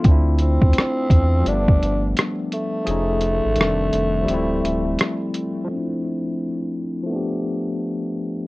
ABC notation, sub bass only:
X:1
M:4/4
L:1/16
Q:"Swing 16ths" 1/4=85
K:Dm
V:1 name="Sub bass" clef=bass
D,,3 E,, z2 E,,2 G,,,2 G,,,2 z4 | F,,,3 ^G,,, F,,,2 F,,,2 D,,,2 D,,,2 z4 | z16 |]